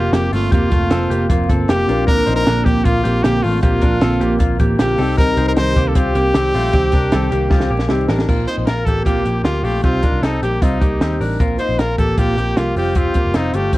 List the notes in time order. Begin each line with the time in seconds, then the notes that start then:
Already playing: A#3 C4 F4 G4 A#4
0.12 F1 F3 A#3 C4 F4 G4, snare, closed hi-hat
0.32 G1 A3 A#3 C4 F4, open hi-hat
0.51 F1 F3 A#3 C4 F4 G4, kick, closed hi-hat
0.71 F1 A3 A#3 C4 F4, kick, closed hi-hat
0.91 F1 F3 A#3 C4 F4 A4, snare, closed hi-hat
1.10 F1 A#3 G4, closed hi-hat
1.29 F1 F3 A#3 C4 F4, kick, closed hi-hat
1.49 G1 A#3 C4 F4 A4, kick, closed hi-hat
1.68 F1 F3 A#3 C4 F4 G4, snare, closed hi-hat
1.86 A#1 A#3 C4 D4 F4 A#4, closed hi-hat
1.91 A#3
2.07 A#2 D3 A#3 C4 D4 F4 A#4, kick, closed hi-hat
2.26 A#1 C4 D#4 F4 C5, closed hi-hat
2.30 A#3
2.36 A#4
2.46 A#1 A#2 D3 A#3 C4 D4 F4 A#4, snare, closed hi-hat
2.65 A#1 A#3 G4, kick, closed hi-hat
2.84 A#1 D3 A#3 C4 F4, kick, closed hi-hat
3.04 A#1 A#3 C4 F4 G4, closed hi-hat
3.24 A#1 A#2 D3 A#3 C4 F4 G4, snare, closed hi-hat
3.42 A1 A3 F4, open hi-hat
3.61 A#1 A#2 D3 A#3 C4 F4 G4, kick, closed hi-hat
3.81 A#1 A#3 C4 D4 F4 A#4, kick, closed hi-hat
4.01 A#1 A#2 D3 A#3 C4 F4 A4, snare, closed hi-hat
4.20 A#1 A#3 G4, closed hi-hat
4.39 A#1 D3 A#3 C4 F4, kick, closed hi-hat
4.58 A1 A#3 C4 F4 G4, kick, closed hi-hat
4.79 A#1 A#2 D3 A#3 C4 F4 G4, snare, closed hi-hat
4.98 C2 G3 C4 D#4 G4 A4, open hi-hat
5.17 C3 D#3 G3 C4 D#4 G4 A#4, kick, closed hi-hat
5.37 C2 G3 C4 D#4 G4 C5, closed hi-hat
5.48 A#4
5.57 C2 C3 D#3 G3 C4 D#4 G4 A#4 C5, snare, closed hi-hat
5.76 C2 A#3 G4, kick, closed hi-hat
5.88 A4
5.95 C2 D#3 G3 C4 F4 G4, kick, closed hi-hat
6.15 C2 G3 A#3 C4 G4, closed hi-hat
6.34 C2 C3 D#3 G3 C4 G4, snare, closed hi-hat
6.54 A#1 G3 A3 C4 F4 G4, open hi-hat
6.73 C2 C3 D#3 G3 C4 G4, kick, closed hi-hat
6.92 C2 G3 C4 D4 G4 A#4, kick, closed hi-hat
7.12 C2 C3 D#3 G3 C4 G4 A4, snare, closed hi-hat
7.31 C2 A#3 G4, closed hi-hat
7.50 C2 D#3 G3 C4 F4 G4, kick, snare
7.60 snare
7.69 A#1 G3 A#3 C4 G4
7.79 snare
7.89 C2 C3 D#3 G3 C4 D#4 G4, snare
8.08 A1 G3 C4 D4 G4 A#4, snare
8.19 snare
8.27 A#1 A#2 F3 A#3 C4 F4 A#4, kick, crash
8.47 A#3 C4 D#4 F4 C5, closed hi-hat
8.58 A#1
8.66 A#1 F4 A#4, snare, closed hi-hat
8.85 A1 A#3 C4 F4 G4 A4, kick, closed hi-hat
9.05 A#1 A#2 F3 A#3 C4 F4 G4, kick, closed hi-hat
9.25 A#1 A#3 C4 F4 G4, closed hi-hat
9.43 D2 F3 A#3 C4 F4 G4, snare, closed hi-hat
9.63 A#1 A3 A#3 C4 F4 G4, open hi-hat
9.82 C2 C3 G3 C4 D#4 F4 G4, kick, closed hi-hat
10.02 G3 C4 D4 D#4 A#4, kick, closed hi-hat
10.12 C2
10.22 C2 C4 D#4 A4, snare, closed hi-hat
10.41 A#1 G3 A#3 C4 D#4 G4, closed hi-hat
10.61 C2 C3 G3 C4 D#4 F4, kick, closed hi-hat
10.81 C2 G3 A#3 C4 D#4 G4, kick, closed hi-hat
11.00 D#2 C3 C4 D#4 G4, snare, closed hi-hat
11.20 A1 G3 C4 D4 D#4 A#4, open hi-hat
11.40 A#1 A#2 F3 A#3 C4 F4 A#4, kick, closed hi-hat
11.59 A#3 C4 D#4 F4 C5, closed hi-hat
11.69 A#1
11.79 A#1 F4 A#4, snare, closed hi-hat
11.98 A1 A#3 G4 A4, kick, closed hi-hat
12.18 A#1 A#2 F3 A#3 C4 F4 G4, kick, closed hi-hat
12.37 A#1 A#3 C4 F4 G4, closed hi-hat
12.56 C2 F3 A#3 C4 F4 G4, snare, closed hi-hat
12.76 F1 F3 G3 C4 F4 G4, open hi-hat
12.95 C4 F4 G4, kick, closed hi-hat
13.14 G3 A#3 C4 F4 G4, kick, closed hi-hat
13.25 F1
13.34 F1 C4 D#4 F4, snare, closed hi-hat
13.53 G1 A3 F4 G4, closed hi-hat
13.72 F1 F3 G3 C4 F4 G4, kick, closed hi-hat